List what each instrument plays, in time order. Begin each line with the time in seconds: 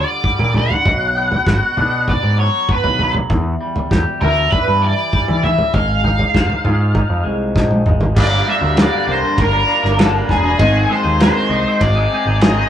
Already playing: clean electric guitar D3 G3 D4 F4, lead electric guitar D5
0.24 clean electric guitar G3, kick
0.39 picked electric bass A#2, floor tom
0.54 picked electric bass A#2, clean electric guitar D3, lead electric guitar F#5, floor tom
0.71 floor tom
0.85 picked electric bass B1, clean electric guitar B2, kick, floor tom
1.16 clean electric guitar B3
1.32 floor tom
1.47 picked electric bass G#1, clean electric guitar F#4, kick, snare
1.77 picked electric bass B2, clean electric guitar D4, floor tom
2.08 clean electric guitar B3, lead electric guitar D5, kick, floor tom
2.23 picked electric bass G#2
2.38 clean electric guitar F#3, lead electric guitar C#5
2.69 clean electric guitar B3, lead electric guitar B4, kick
2.84 picked electric bass B1, floor tom
2.99 clean electric guitar F#3, floor tom
3.15 floor tom
3.30 picked electric bass E2, clean electric guitar E2, kick, floor tom
3.61 clean electric guitar G3
3.76 floor tom
3.91 picked electric bass E2, clean electric guitar G4, kick, snare
4.21 picked electric bass D2, clean electric guitar E4, lead electric guitar A#4, floor tom
4.51 clean electric guitar G3, lead electric guitar B4, kick, floor tom
4.68 picked electric bass G2
4.82 clean electric guitar E3, lead electric guitar D5
5.13 clean electric guitar G3, kick
5.28 picked electric bass E3, floor tom
5.43 picked electric bass E3, clean electric guitar E3, lead electric guitar E5, floor tom
5.58 floor tom
5.73 picked electric bass G#1, clean electric guitar G#3, lead electric guitar F5, kick, floor tom
6.04 clean electric guitar D#4, floor tom
6.19 floor tom
6.34 picked electric bass F1, clean electric guitar C5, kick, snare
6.50 floor tom
6.64 picked electric bass G#2, clean electric guitar F4, floor tom
6.95 clean electric guitar D#4, kick, floor tom
7.10 picked electric bass F2
7.24 picked electric bass C2, clean electric guitar G#3
7.56 picked electric bass A#1, clean electric guitar D#4, kick, snare
7.71 high tom
7.86 picked electric bass G#1, clean electric guitar G#3, mid tom
8.01 floor tom
8.15 picked electric bass G1, clean electric guitar G2 D3 G3 A#3 D4 A#4, kick, crash
8.20 lead electric guitar D5
8.46 clean electric guitar G3 A#3 D4 A#4
8.50 lead electric guitar E5
8.61 picked electric bass D2, clean electric guitar G3 A#3 D4 A#4
8.76 clean electric guitar G2 D3 G3 A#3 D4 A#4, snare, ride bell
8.80 lead electric guitar D5
9.07 picked electric bass C2, clean electric guitar G3 A#3 D4 A#4
9.11 lead electric guitar C5
9.23 clean electric guitar G3 A#3 D4 A#4
9.37 picked electric bass G1, lead electric guitar A#4, kick, ride bell
9.52 clean electric guitar G3 A#3 D4 A#4
9.67 clean electric guitar G3 A#3 D4 A#4
9.82 picked electric bass G1, clean electric guitar G3 A#3 D4 A#4, snare
9.97 clean electric guitar G2 D3 G3 A#3 D4 A#4, lead electric guitar A4, snare, ride bell
10.12 clean electric guitar G3 A#3 D4 A#4
10.29 picked electric bass E1, lead electric guitar G#4, kick, snare
10.43 clean electric guitar G3 A#3 D4 A#4
10.58 picked electric bass G#1, clean electric guitar G#2 D#3 G#3 C4 D#4 G#4, kick, ride bell
10.88 clean electric guitar G#3 C4 D#4 G#4
10.92 lead electric guitar C5
11.03 picked electric bass D#2, clean electric guitar G#3 C4 D#4 G#4
11.18 clean electric guitar G#2 D#3 G#3 C4 D#4 G#4, lead electric guitar C5, snare, ride bell
11.48 picked electric bass C2, clean electric guitar G#3 C4 D#4 G#4
11.66 clean electric guitar G#3 C4 D#4 G#4
11.81 picked electric bass G#1, lead electric guitar D5, kick, ride bell
11.95 clean electric guitar G#3 C4 D#4 G#4
12.11 clean electric guitar G#3 C4 D#4 G#4
12.25 picked electric bass G#1, clean electric guitar C4 D#4 G#4
12.30 clean electric guitar G#3
12.41 clean electric guitar G#2 D#3 G#3 C4 D#4 G#4, lead electric guitar D#5, snare, ride bell
12.56 clean electric guitar G#3 C4 D#4 G#4